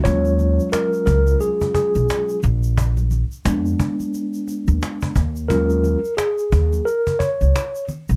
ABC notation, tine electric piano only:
X:1
M:4/4
L:1/8
Q:"Swing 16ths" 1/4=88
K:Ebm
V:1 name="Tine electric piano"
d2 B B A A2 z | z8 | B2 A2 B d2 z |]
V:2 name="Tine electric piano"
[G,A,DF]6- [G,A,DF] z | z2 [A,C=D]4- [A,CD] z | [G,A,DF] z6 z |]